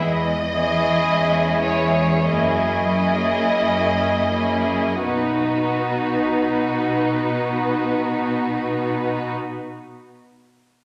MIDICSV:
0, 0, Header, 1, 5, 480
1, 0, Start_track
1, 0, Key_signature, 5, "major"
1, 0, Tempo, 1027397
1, 22, Time_signature, 4, 2, 24, 8
1, 503, Tempo, 1178782
1, 983, Tempo, 1324503
1, 1463, Tempo, 1459854
1, 2423, Tempo, 1492537
1, 3383, Tempo, 1418440
1, 3842, End_track
2, 0, Start_track
2, 0, Title_t, "Violin section"
2, 0, Program_c, 0, 48
2, 20, Note_on_c, 0, 75, 59
2, 732, Note_off_c, 0, 75, 0
2, 733, Note_on_c, 0, 73, 46
2, 978, Note_off_c, 0, 73, 0
2, 984, Note_on_c, 0, 75, 47
2, 1945, Note_off_c, 0, 75, 0
2, 1948, Note_on_c, 0, 71, 33
2, 3330, Note_off_c, 0, 71, 0
2, 3842, End_track
3, 0, Start_track
3, 0, Title_t, "Violin section"
3, 0, Program_c, 1, 48
3, 255, Note_on_c, 1, 64, 35
3, 257, Note_on_c, 1, 68, 38
3, 723, Note_off_c, 1, 64, 0
3, 724, Note_off_c, 1, 68, 0
3, 730, Note_on_c, 1, 68, 30
3, 731, Note_on_c, 1, 64, 32
3, 976, Note_off_c, 1, 64, 0
3, 976, Note_off_c, 1, 68, 0
3, 981, Note_on_c, 1, 64, 30
3, 981, Note_on_c, 1, 68, 31
3, 1213, Note_off_c, 1, 64, 0
3, 1213, Note_off_c, 1, 68, 0
3, 1219, Note_on_c, 1, 64, 32
3, 1221, Note_on_c, 1, 68, 32
3, 1693, Note_off_c, 1, 64, 0
3, 1694, Note_off_c, 1, 68, 0
3, 1702, Note_on_c, 1, 64, 26
3, 1702, Note_on_c, 1, 68, 26
3, 1940, Note_off_c, 1, 64, 0
3, 1940, Note_off_c, 1, 68, 0
3, 1945, Note_on_c, 1, 63, 28
3, 1945, Note_on_c, 1, 66, 27
3, 3327, Note_off_c, 1, 63, 0
3, 3327, Note_off_c, 1, 66, 0
3, 3842, End_track
4, 0, Start_track
4, 0, Title_t, "Viola section"
4, 0, Program_c, 2, 48
4, 261, Note_on_c, 2, 61, 31
4, 263, Note_on_c, 2, 56, 31
4, 726, Note_off_c, 2, 61, 0
4, 727, Note_off_c, 2, 56, 0
4, 735, Note_on_c, 2, 56, 33
4, 735, Note_on_c, 2, 61, 32
4, 979, Note_off_c, 2, 56, 0
4, 979, Note_off_c, 2, 61, 0
4, 984, Note_on_c, 2, 58, 29
4, 985, Note_on_c, 2, 61, 30
4, 1215, Note_off_c, 2, 58, 0
4, 1215, Note_off_c, 2, 61, 0
4, 1220, Note_on_c, 2, 58, 29
4, 1220, Note_on_c, 2, 61, 29
4, 1693, Note_off_c, 2, 58, 0
4, 1693, Note_off_c, 2, 61, 0
4, 1703, Note_on_c, 2, 58, 24
4, 1703, Note_on_c, 2, 61, 24
4, 1940, Note_off_c, 2, 58, 0
4, 1940, Note_off_c, 2, 61, 0
4, 1946, Note_on_c, 2, 59, 29
4, 1946, Note_on_c, 2, 63, 30
4, 3328, Note_off_c, 2, 59, 0
4, 3328, Note_off_c, 2, 63, 0
4, 3842, End_track
5, 0, Start_track
5, 0, Title_t, "Cello section"
5, 0, Program_c, 3, 48
5, 21, Note_on_c, 3, 40, 41
5, 444, Note_off_c, 3, 40, 0
5, 501, Note_on_c, 3, 40, 43
5, 922, Note_off_c, 3, 40, 0
5, 980, Note_on_c, 3, 42, 36
5, 1403, Note_off_c, 3, 42, 0
5, 1461, Note_on_c, 3, 42, 33
5, 1888, Note_off_c, 3, 42, 0
5, 1943, Note_on_c, 3, 47, 28
5, 3325, Note_off_c, 3, 47, 0
5, 3842, End_track
0, 0, End_of_file